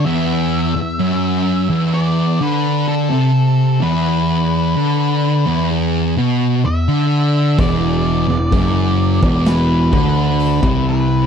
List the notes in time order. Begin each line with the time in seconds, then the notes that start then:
0.05 E2 E5
0.76 E2
1.00 F#2
1.69 E2
1.94 D5
2.40 D3 B4
2.88 A4
3.10 C3
3.80 E2 B4
4.76 D3
5.45 E2
6.16 B2
6.65 E2 E5
6.88 D3
7.58 E1 E2 D5, kick, open hi-hat
8.29 E1 E2
8.52 F#1 F#2, kick, open hi-hat
9.22 E1 E2, kick
9.45 B4, snare, open hi-hat
9.92 D2 D3, kick
10.40 open hi-hat
10.62 C2 C3, kick
10.89 B4